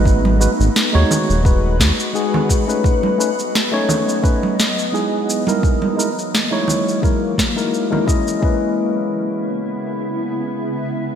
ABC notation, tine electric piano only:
X:1
M:4/4
L:1/16
Q:"Swing 16ths" 1/4=86
K:C#m
V:1 name="Tine electric piano"
[G,DFB]2 [G,DFB] z2 [G,DFc]3 [G,DFB]2 z2 [G,DFG]3 [A,CDB]- | [A,CDB]2 [A,CDB] z2 [A,CDc]3 [A,CDB]2 z2 [G,DEG]3 [G,DE^A]- | [G,DE^A]2 [G,DEA] z2 [G,DEc]3 [G,DEA]2 z [G,DEA]2 [G,DEA] [G,CEd]2 | [G,CEB]16 |]